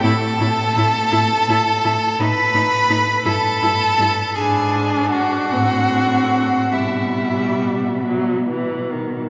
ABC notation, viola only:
X:1
M:6/8
L:1/8
Q:3/8=53
K:Ador
V:1 name="Viola"
E E E E E E | ^D D D E E E | D3 C3 | G,3 F, E, ^D, |]